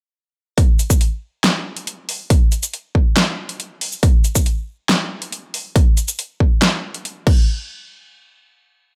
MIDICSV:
0, 0, Header, 1, 2, 480
1, 0, Start_track
1, 0, Tempo, 431655
1, 641, Time_signature, 4, 2, 24, 8
1, 9952, End_track
2, 0, Start_track
2, 0, Title_t, "Drums"
2, 641, Note_on_c, 9, 36, 117
2, 641, Note_on_c, 9, 42, 83
2, 752, Note_off_c, 9, 36, 0
2, 752, Note_off_c, 9, 42, 0
2, 882, Note_on_c, 9, 42, 55
2, 882, Note_on_c, 9, 82, 50
2, 993, Note_off_c, 9, 42, 0
2, 993, Note_off_c, 9, 82, 0
2, 1002, Note_on_c, 9, 36, 62
2, 1002, Note_on_c, 9, 42, 54
2, 1002, Note_on_c, 9, 82, 79
2, 1113, Note_off_c, 9, 36, 0
2, 1114, Note_off_c, 9, 42, 0
2, 1114, Note_off_c, 9, 82, 0
2, 1121, Note_on_c, 9, 42, 82
2, 1232, Note_off_c, 9, 42, 0
2, 1601, Note_on_c, 9, 38, 119
2, 1601, Note_on_c, 9, 42, 82
2, 1712, Note_off_c, 9, 38, 0
2, 1712, Note_off_c, 9, 42, 0
2, 1963, Note_on_c, 9, 42, 56
2, 2074, Note_off_c, 9, 42, 0
2, 2082, Note_on_c, 9, 42, 84
2, 2193, Note_off_c, 9, 42, 0
2, 2321, Note_on_c, 9, 46, 99
2, 2432, Note_off_c, 9, 46, 0
2, 2560, Note_on_c, 9, 36, 126
2, 2561, Note_on_c, 9, 42, 88
2, 2671, Note_off_c, 9, 36, 0
2, 2672, Note_off_c, 9, 42, 0
2, 2801, Note_on_c, 9, 42, 58
2, 2801, Note_on_c, 9, 82, 51
2, 2912, Note_off_c, 9, 42, 0
2, 2912, Note_off_c, 9, 82, 0
2, 2923, Note_on_c, 9, 42, 56
2, 2923, Note_on_c, 9, 82, 78
2, 3034, Note_off_c, 9, 42, 0
2, 3034, Note_off_c, 9, 82, 0
2, 3042, Note_on_c, 9, 42, 83
2, 3153, Note_off_c, 9, 42, 0
2, 3280, Note_on_c, 9, 36, 62
2, 3391, Note_off_c, 9, 36, 0
2, 3520, Note_on_c, 9, 38, 127
2, 3520, Note_on_c, 9, 42, 83
2, 3632, Note_off_c, 9, 38, 0
2, 3632, Note_off_c, 9, 42, 0
2, 3882, Note_on_c, 9, 42, 57
2, 3993, Note_off_c, 9, 42, 0
2, 4000, Note_on_c, 9, 42, 86
2, 4111, Note_off_c, 9, 42, 0
2, 4240, Note_on_c, 9, 46, 98
2, 4351, Note_off_c, 9, 46, 0
2, 4361, Note_on_c, 9, 82, 50
2, 4472, Note_off_c, 9, 82, 0
2, 4480, Note_on_c, 9, 36, 127
2, 4480, Note_on_c, 9, 42, 82
2, 4591, Note_off_c, 9, 36, 0
2, 4591, Note_off_c, 9, 42, 0
2, 4720, Note_on_c, 9, 42, 56
2, 4720, Note_on_c, 9, 82, 53
2, 4831, Note_off_c, 9, 42, 0
2, 4831, Note_off_c, 9, 82, 0
2, 4841, Note_on_c, 9, 36, 64
2, 4841, Note_on_c, 9, 42, 54
2, 4841, Note_on_c, 9, 82, 81
2, 4952, Note_off_c, 9, 42, 0
2, 4952, Note_off_c, 9, 82, 0
2, 4953, Note_off_c, 9, 36, 0
2, 4960, Note_on_c, 9, 42, 83
2, 5071, Note_off_c, 9, 42, 0
2, 5441, Note_on_c, 9, 38, 124
2, 5441, Note_on_c, 9, 42, 80
2, 5552, Note_off_c, 9, 38, 0
2, 5552, Note_off_c, 9, 42, 0
2, 5802, Note_on_c, 9, 42, 59
2, 5913, Note_off_c, 9, 42, 0
2, 5921, Note_on_c, 9, 42, 81
2, 6032, Note_off_c, 9, 42, 0
2, 6160, Note_on_c, 9, 46, 94
2, 6272, Note_off_c, 9, 46, 0
2, 6400, Note_on_c, 9, 36, 121
2, 6401, Note_on_c, 9, 42, 82
2, 6511, Note_off_c, 9, 36, 0
2, 6512, Note_off_c, 9, 42, 0
2, 6641, Note_on_c, 9, 42, 55
2, 6641, Note_on_c, 9, 82, 56
2, 6752, Note_off_c, 9, 42, 0
2, 6752, Note_off_c, 9, 82, 0
2, 6762, Note_on_c, 9, 42, 52
2, 6762, Note_on_c, 9, 82, 85
2, 6873, Note_off_c, 9, 42, 0
2, 6873, Note_off_c, 9, 82, 0
2, 6881, Note_on_c, 9, 42, 81
2, 6992, Note_off_c, 9, 42, 0
2, 7121, Note_on_c, 9, 36, 63
2, 7232, Note_off_c, 9, 36, 0
2, 7360, Note_on_c, 9, 38, 122
2, 7360, Note_on_c, 9, 42, 79
2, 7471, Note_off_c, 9, 38, 0
2, 7471, Note_off_c, 9, 42, 0
2, 7722, Note_on_c, 9, 42, 53
2, 7833, Note_off_c, 9, 42, 0
2, 7841, Note_on_c, 9, 42, 80
2, 7952, Note_off_c, 9, 42, 0
2, 8080, Note_on_c, 9, 36, 113
2, 8081, Note_on_c, 9, 49, 93
2, 8192, Note_off_c, 9, 36, 0
2, 8192, Note_off_c, 9, 49, 0
2, 9952, End_track
0, 0, End_of_file